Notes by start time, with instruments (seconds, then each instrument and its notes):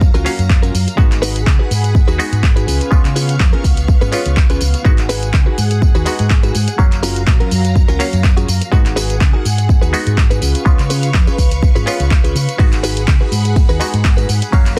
Already playing: fingered electric bass F#2, string machine F#3 F5 A#5, clav C#4
0.01 kick, tambourine
0.14 fingered electric bass C#2, clean electric guitar C#4 F4 F#4 A#4, closed hi-hat, tambourine
0.25 clav F#3 A#3 C#4 F5, open hi-hat, tambourine
0.39 fingered electric bass F#2, closed hi-hat, tambourine
0.50 kick, clap, tambourine
0.62 clean electric guitar C#4 F4 F#4 A#4, closed hi-hat, tambourine
0.74 fingered electric bass F#2, open hi-hat, tambourine
0.87 muted clean electric guitar stroke, closed hi-hat, tambourine
0.97 fingered electric bass G#2, clav G#3 B3 D#4 F#4, string machine G#4 F#5 B5, kick, tambourine
1.11 fingered electric bass G#1, clap, closed hi-hat, tambourine
1.22 clean electric guitar D#4 F#4 G#4 B4, open hi-hat, tambourine
1.36 closed hi-hat, tambourine
1.47 fingered electric bass C#3, kick, clap, tambourine
1.59 clean electric guitar D#4 F#4 G#4 B4
1.71 fingered electric bass G#2, open hi-hat, tambourine
1.83 muted clean electric guitar stroke, closed hi-hat, tambourine
1.95 kick, tambourine
2.08 fingered electric bass D#2, clean electric guitar D#4 F#4 G#4 B4, closed hi-hat, tambourine
2.18 clav G#3 B3 D#4 F#4, open hi-hat, tambourine
2.32 fingered electric bass G#2, closed hi-hat, tambourine
2.43 muted clean electric guitar stroke, kick, clap, tambourine
2.56 clean electric guitar D#4 F#4 G#4 B4, closed hi-hat, tambourine
2.67 fingered electric bass C#2, string machine B3 F5 C#6, clean electric guitar C#4 F4 G#4 B4, open hi-hat, tambourine
2.81 closed hi-hat, tambourine
2.91 fingered electric bass C#2, clav G#3 B3 C#4 F4, kick, tambourine
3.04 fingered electric bass C#3, clap, closed hi-hat, tambourine
3.16 clean electric guitar C#4 F4 G#4 B4, open hi-hat, tambourine
3.29 closed hi-hat, tambourine
3.40 fingered electric bass F2, kick, clap, tambourine
3.53 clean electric guitar C#4 F4 G#4 A#4, closed hi-hat
3.64 fingered electric bass C#2, kick, open hi-hat, tambourine
3.77 muted clean electric guitar stroke, closed hi-hat, tambourine
3.88 kick, tambourine
4.01 fingered electric bass G#2, clean electric guitar C#4 F4 G#4 B4, closed hi-hat, tambourine
4.12 clav G#3 B3 C#4 F4, open hi-hat, tambourine
4.26 fingered electric bass C#2, closed hi-hat, tambourine
4.37 muted clean electric guitar stroke, kick, clap, tambourine
4.50 clean electric guitar C#4 F4 G#4 B4, closed hi-hat, tambourine
4.61 fingered electric bass C#2, open hi-hat, tambourine
4.74 muted clean electric guitar stroke, closed hi-hat, tambourine
4.85 fingered electric bass G#2, clav G#3 B3 D#4 F#4, string machine G#4 F#5, kick, tambourine
4.98 fingered electric bass G#1, clap, closed hi-hat, tambourine
5.09 clean electric guitar D#4 F#4 G#4 B4, open hi-hat, tambourine
5.23 closed hi-hat, tambourine
5.34 fingered electric bass C#3, kick, clap, tambourine
5.46 clean electric guitar D#4 F#4 G#4 B4
5.58 fingered electric bass G#2, open hi-hat, tambourine
5.71 muted clean electric guitar stroke, closed hi-hat, tambourine
5.82 kick, tambourine
5.95 fingered electric bass D#2, clean electric guitar D#4 F#4 G#4 B4, closed hi-hat, tambourine
6.06 clav G#3 B3 D#4 F#4, open hi-hat, tambourine
6.19 fingered electric bass G#2, closed hi-hat, tambourine
6.30 muted clean electric guitar stroke, kick, clap, tambourine
6.43 clean electric guitar D#4 F#4 G#4 B4, closed hi-hat, tambourine
6.55 fingered electric bass G#2, open hi-hat, tambourine
6.68 muted clean electric guitar stroke, closed hi-hat, tambourine
6.78 fingered electric bass F#2, clav F#3 A#3 C#4 F5, string machine F#3 F5 A#5, kick, tambourine
6.92 fingered electric bass F#1, clap, closed hi-hat, tambourine
7.03 clean electric guitar C#4 F4 F#4 A#4, open hi-hat, tambourine
7.16 closed hi-hat, tambourine
7.27 fingered electric bass A#2, kick, clap, tambourine
7.40 clean electric guitar C#4 F4 F#4 A#4, closed hi-hat
7.51 fingered electric bass F#2, open hi-hat, tambourine
7.64 muted clean electric guitar stroke, closed hi-hat, tambourine
7.76 kick, tambourine
7.88 fingered electric bass C#2, clean electric guitar C#4 F4 F#4 A#4, closed hi-hat, tambourine
7.99 clav F#3 A#3 C#4 F5, open hi-hat, tambourine
8.13 fingered electric bass F#2, closed hi-hat, tambourine
8.24 muted clean electric guitar stroke, kick, clap, tambourine
8.37 clean electric guitar C#4 F4 F#4 G#4, closed hi-hat, tambourine
8.48 fingered electric bass F#2, open hi-hat, tambourine
8.61 muted clean electric guitar stroke, closed hi-hat, tambourine
8.72 fingered electric bass G#2, clav G#3 B3 D#4 F#4, string machine G#4 F#5, kick, tambourine
8.86 fingered electric bass G#1, clap, closed hi-hat, tambourine
8.96 clean electric guitar D#4 F#4 G#4 B4, open hi-hat, tambourine
9.10 closed hi-hat, tambourine
9.21 fingered electric bass C#3, kick, clap, tambourine
9.33 clean electric guitar D#4 F#4 G#4 A#4
9.45 fingered electric bass G#2, open hi-hat, tambourine
9.58 muted clean electric guitar stroke, closed hi-hat, tambourine
9.69 kick, tambourine
9.81 fingered electric bass D#2, clean electric guitar D#4 F#4 G#4 B4, closed hi-hat, tambourine
9.93 clav G#3 B3 D#4 F#4, open hi-hat, tambourine
10.07 fingered electric bass G#2, closed hi-hat, tambourine
10.17 muted clean electric guitar stroke, kick, clap, tambourine
10.30 clean electric guitar D#4 F#4 G#4 B4, closed hi-hat, tambourine
10.41 fingered electric bass C#2, clean electric guitar C#4 F4 G#4 B4, string machine B4 F5 C#6, open hi-hat, tambourine
10.55 closed hi-hat, tambourine
10.65 fingered electric bass C#2, clav G#3 B3 C#4 F4, kick, tambourine
10.79 fingered electric bass C#3, clap, closed hi-hat, tambourine
10.90 clean electric guitar C#4 F4 G#4 B4, open hi-hat, tambourine
11.03 closed hi-hat, tambourine
11.14 fingered electric bass F2, kick, clap, tambourine
11.27 clean electric guitar C#4 F4 G#4 B4, closed hi-hat, tambourine
11.38 fingered electric bass C#2, kick, open hi-hat, tambourine
11.51 muted clean electric guitar stroke, closed hi-hat, tambourine
11.63 kick, tambourine
11.75 fingered electric bass G#2, clean electric guitar C#4 F4 G#4 B4, closed hi-hat, tambourine
11.86 clav G#3 B3 C#4 F4, open hi-hat, tambourine
12.00 fingered electric bass C#2, closed hi-hat, tambourine
12.11 kick, clap, tambourine
12.24 clean electric guitar C#4 F4 G#4 B4, closed hi-hat, tambourine
12.35 fingered electric bass C#3, open hi-hat, tambourine
12.48 muted clean electric guitar stroke, closed hi-hat, tambourine
12.58 fingered electric bass G#2, clav G#3 B3 D#4 F#4, string machine G#4 F#5 B5, kick, ride, tambourine
12.73 fingered electric bass G#1, clap, closed hi-hat, tambourine
12.83 clean electric guitar D#4 F#4 G#4 B4, open hi-hat, tambourine
12.97 closed hi-hat, tambourine
13.08 fingered electric bass C#3, kick, clap, ride, tambourine
13.21 clean electric guitar D#4 F#4 G#4 B4
13.32 fingered electric bass G#2, open hi-hat, tambourine
13.45 muted clean electric guitar stroke, closed hi-hat, tambourine
13.56 kick, ride, tambourine
13.69 fingered electric bass D#2, clean electric guitar D#4 F#4 G#4 B4, closed hi-hat, tambourine
13.80 clav G#3 B3 D#4 F#4, open hi-hat, tambourine
13.94 fingered electric bass G#2, closed hi-hat, tambourine
14.04 muted clean electric guitar stroke, kick, clap, ride, tambourine
14.17 clean electric guitar D#4 F#4 G#4 B4, closed hi-hat, tambourine
14.29 fingered electric bass G#2, open hi-hat, tambourine
14.42 muted clean electric guitar stroke, closed hi-hat, tambourine
14.52 fingered electric bass F#2, clav F#3 A#3 C#4 F5, string machine F#3 F5 A#5, kick, ride, tambourine
14.66 fingered electric bass F#1, clap, closed hi-hat, tambourine